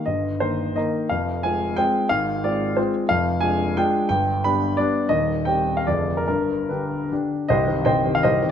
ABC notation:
X:1
M:3/4
L:1/16
Q:1/4=173
K:Fdor
V:1 name="Grand piano"
e4 c4 e4 | f4 a4 g4 | f4 d4 c2 z2 | [K:Cm] f4 a4 g4 |
g4 =b4 d4 | e4 g3 f d3 B | B4 =B6 z2 | [Gce]4 [ceg]3 f [Gce]3 z |]
V:2 name="Grand piano" clef=bass
[G,,,G,,]4 [E,B,B]4 [E,B,B]4 | [F,,,F,,]4 [A,CF]4 [A,CF]4 | [A,,,A,,]4 [A,CF]4 [A,CF]4 | [K:Cm] [F,,,F,,]4 [A,DF]4 [A,DF]4 |
[G,,,G,,]4 [G,=B,D]4 [G,B,D]4 | [E,,,E,,]4 [G,CG]4 [F,,,F,,D,DA]4 | [G,,,G,,]4 [D,DG]4 [D,DG]4 | [C,,,C,,]2 [E,CG]2 [C,,,C,,]2 [E,CG]2 [C,,,C,,]2 [E,CG]2 |]